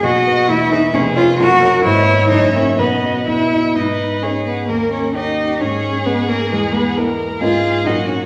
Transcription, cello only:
\new Staff \with { instrumentName = "Cello" } { \time 2/4 \key b \major \tempo 4 = 132 fis'4 e'8 dis'8 | cis'8 eis'8 fis'4 | e'4 dis'8 cis'8 | b4 e'4 |
\key gis \minor dis'4 cis'8 b8 | ais8 cis'8 dis'4 | cis'4 b8 ais8 | gis8 b8 r4 |
\key cis \mixolydian eis'4 dis'8 cis'8 | }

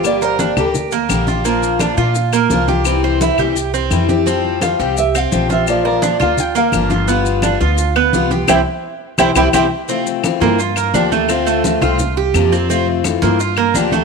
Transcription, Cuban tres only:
\new Staff \with { instrumentName = "Cuban tres" } { \time 4/4 \key f \major \tempo 4 = 171 g'8 bes'8 d'8 g'4 bes4 f'8 | bes4 d'8 f'4 bes4 g'8~ | g'8 c''8 e'8 g'4 c'4 g'8 | c'4 f'8 g'4 c'4 f'8~ |
f'8 bes'8 d'8 f'4 bes4 f'8 | b4 d'8 f'4 b4 g'8 | <c' e' g'>8 r4. <c' e' g'>8 <c' e' g'>8 <c' e' g'>8 r8 | c'8 r4 bes8 f'8 bes8 d'8 a8 |
c'8 a4 f'4 g'4 c'8 | c'8 r4 bes8 f'8 bes8 d'8 a8 | }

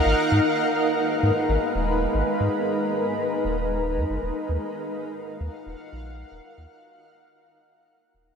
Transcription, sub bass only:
\new Staff \with { instrumentName = "Sub bass" } { \clef bass \time 4/4 \key gis \dorian \tempo 4 = 115 gis,,16 r16 gis,16 r4. gis,16 r16 gis,,16 r16 dis,,8 r16 | gis,,16 r16 gis,16 r4. r16 dis,,4 gis,16 fis,,16 | dis,,16 r16 dis,16 r4. dis,16 r16 dis,,16 r16 ais,,8 r16 | dis,,16 r16 dis,16 r2 r8. dis,,16 r16 | }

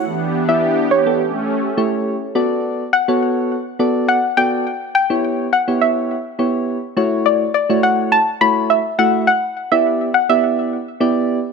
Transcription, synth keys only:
\new Staff \with { instrumentName = "Synth keys" } { \time 4/4 \key b \minor \tempo 4 = 104 r8. <b e' g' d''>8. r16 <b e' g' a'>16 r4 <a e' g' cis''>8. r16 | <b fis' a' d''>8. r8 <b fis' a' cis''>8. r8 <b fis' a' d''>8. r16 <b fis' a' d''>8 | r8. <b e' g' cis''>8. r16 <b e' g' cis''>8. r8 <b e' g' cis''>8. r16 | <a e' fis' cis''>8. r8 <a e' fis' cis''>8. r8 <a e' fis' cis''>8. r16 <a e' fis' e''>8 |
r8. <b e' g' d''>8. r16 <b e' g' d''>8. r8 <b e' g' d''>8. r16 | }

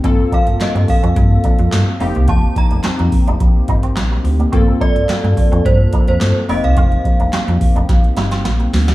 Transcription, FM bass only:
\new Staff \with { instrumentName = "FM bass" } { \clef bass \time 4/4 \key f \mixolydian \tempo 4 = 107 g,,8 r16 g,,16 g,16 g,16 r16 f,16 g,8 r16 f,16 g,16 r16 f,,16 c,16 | f,,8 r16 f,,16 f,16 f,16 r16 f,,16 r8 g,,8 bes,,8 d,8 | g,,8 r16 g,,16 g,16 g,16 r16 f,16 g,8 r16 f,16 g,16 r16 f,,16 c,16 | f,,8 r16 f,,16 f,16 f,16 r16 f,,16 r8 g,,8 bes,,8 d,8 | }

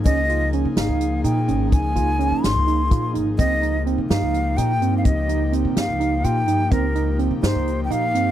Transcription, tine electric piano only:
\new Staff \with { instrumentName = "Tine electric piano" } { \time 7/8 \key c \phrygian \tempo 4 = 126 des'8 f'8 des'8 ees'4 ees'8 des'8~ | des'8 f'8 des'4 ees'8 f'8 ees'8 | c'8 ees'8 c'8 ees'4 ees'8 c'8~ | c'8 ees'8 c'4 ees'8 f'8 ees'8 |
c'8 ees'8 c'8 ees'4 ees'8 c'8 | }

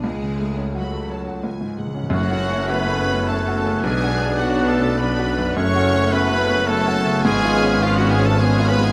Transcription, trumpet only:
\new Staff \with { instrumentName = "Trumpet" } { \time 3/4 \key fis \minor \tempo 4 = 104 r2. | fis'4 b'4 a'4 | gis'4 fis'8 a'8 b'4 | cis''4 b'4 a'4 |
gis'4 eis'16 fis'16 gis'16 a'16 gis'8 b'16 gis'16 | }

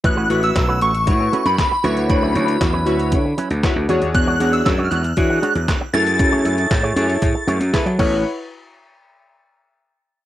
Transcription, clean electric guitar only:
\new Staff \with { instrumentName = "Clean electric guitar" } { \time 4/4 \key a \major \tempo 4 = 117 r16 <a cis' fis' b'>16 <a cis' fis' cis''>16 r8 <a cis' fis' b'>16 <a cis' fis' b'>16 r8. <a cis' fis' b'>16 r8. <fis cis' e' b'>16 r16 | r16 <fis cis' e' b'>16 <fis cis' e' cis''>16 r8 <fis cis' e' b'>16 <fis cis' e' b'>16 r8. <fis cis' e' b'>16 r8. <gis d' fis' cis''>16 r16 | r16 <gis d' fis' cis''>16 <gis d' fis' d''>16 r8 <gis d' fis' cis''>16 <gis d' fis' cis''>16 r8. <gis d' fis' cis''>16 r8. <a e' gis' cis''>16 r16 | r16 <a e' gis' cis''>16 <a e' gis' e''>16 r8 <a e' gis' cis''>16 <a e' gis' cis''>16 r8. <a e' gis' cis''>16 r8. <b fis' a' cis''>16 r16 |
r1 | }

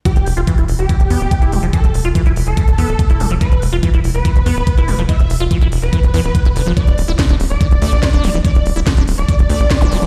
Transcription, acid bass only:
\new Staff \with { instrumentName = "Acid bass" } { \clef bass \time 4/4 \key e \phrygian \tempo 4 = 143 e16 r8 f'16 e16 e'16 r8 e16 r16 b16 r8 e'16 f16 f16 | e16 r8 f'16 e16 e'16 r8 e16 r16 b16 r8 e'16 f16 f16 | e16 r8 f'16 e16 e'16 r8 e16 r16 b16 r8 e'16 f16 f16 | e16 r8 f'16 e16 e'16 r8 e16 r16 e16 r8 e'16 d16 f16 |
d16 r8 e'16 d16 d'16 r8 d16 r16 a16 r8 d'16 e16 e16 | d16 r8 e'16 d16 d'16 r8 d16 r16 a16 r8 d'16 e16 e16 | }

